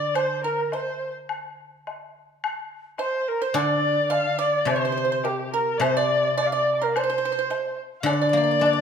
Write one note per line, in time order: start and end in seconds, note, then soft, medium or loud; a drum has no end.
0.00 0.72 D3 medium
0.00 0.14 D5 medium
0.00 0.16 D5 medium
0.00 0.17 D5 loud
0.15 0.43 C5 medium
0.15 0.42 C5 medium
0.15 0.46 C5 medium
0.15 high woodblock medium
0.44 0.70 A#4 medium
0.44 0.71 A#4 medium
0.44 0.76 A#4 medium
0.72 1.13 C5 medium
0.72 1.17 C5 medium
0.72 high woodblock soft
0.72 low woodblock soft
1.29 high woodblock medium
1.87 high woodblock soft
1.87 low woodblock soft
2.44 high woodblock medium
2.98 3.38 C5 medium
2.98 3.30 C5 medium
2.98 high woodblock soft
2.98 low woodblock soft
3.28 3.45 A#4 medium
3.28 3.43 A#4 medium
3.41 3.58 C5 medium
3.41 3.55 C5 medium
3.41 3.58 C5 medium
3.54 5.24 D3 medium
3.54 4.07 D5 medium
3.54 4.12 D5 medium
3.54 4.39 D5 loud
3.54 high woodblock medium
4.10 4.37 F5 medium
4.10 4.43 F5 medium
4.10 high woodblock soft
4.10 low woodblock soft
4.39 4.65 D5 medium
4.39 4.70 D5 medium
4.39 4.69 D5 medium
4.65 5.78 C3 medium
4.65 4.74 C5 medium
4.65 5.25 C5 medium
4.65 5.26 C5 medium
4.65 high woodblock medium
4.76 4.82 C5 soft
4.85 4.91 C5 medium
4.92 4.96 C5 soft
4.97 5.04 C5 medium
5.05 5.11 C5 soft
5.12 5.19 C5 medium
5.24 5.52 G4 medium
5.24 5.65 G4 medium
5.24 5.30 A#4 medium
5.24 high woodblock soft
5.24 low woodblock soft
5.29 5.53 G4 medium
5.53 5.80 A#4 medium
5.78 7.51 C3 medium
5.78 5.95 C5 medium
5.78 5.99 C5 medium
5.78 5.83 D5 soft
5.78 high woodblock medium
5.83 5.96 C5 medium
5.97 6.37 D5 loud
5.97 6.36 D5 medium
5.97 6.40 D5 medium
6.37 6.51 D5 medium
6.37 6.48 D5 medium
6.37 6.53 D5 medium
6.37 high woodblock soft
6.37 low woodblock soft
6.47 6.55 F5 medium
6.52 6.80 D5 medium
6.52 6.74 D5 medium
6.52 6.85 D5 medium
6.75 6.79 D6 soft
6.79 6.95 A#4 medium
6.79 6.85 A#5 soft
6.79 6.82 C6 soft
6.83 6.99 A#4 medium
6.83 6.88 G5 soft
6.89 6.92 F5 soft
6.93 7.79 C5 medium
6.93 7.02 C5 medium
6.93 6.96 D5 soft
6.93 high woodblock medium
6.98 7.80 C5 medium
6.98 7.02 D5 medium
7.04 7.08 C5 medium
7.10 7.17 C5 medium
7.18 7.24 C5 medium
7.25 7.31 C5 medium
7.32 7.38 C5 medium
7.39 7.46 C5 medium
7.50 7.77 C5 medium
7.50 high woodblock soft
7.50 low woodblock soft
8.01 8.81 D3 medium
8.01 8.08 F5 medium
8.06 8.12 D5 medium
8.06 8.81 D5 medium
8.06 8.81 D5 loud
8.06 high woodblock medium
8.13 8.20 D5 medium
8.21 8.28 D5 medium
8.29 8.81 A#3 soft
8.29 8.36 D5 soft
8.37 8.42 D5 medium
8.44 8.50 D5 soft
8.51 8.58 D5 medium
8.59 8.81 D4 soft
8.59 8.65 D5 soft
8.59 high woodblock soft
8.59 low woodblock soft
8.66 8.72 D5 medium
8.73 8.80 D5 medium